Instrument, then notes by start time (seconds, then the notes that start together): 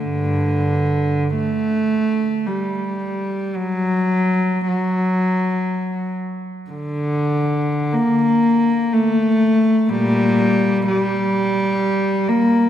cello
0.04 G2 D3
1.36 A3
2.47 G3
3.57 F#3
4.67 F#3
6.71 D3
7.93 A#3
8.93 A3
9.90 A#2 G3
10.88 G3
12.28 A#3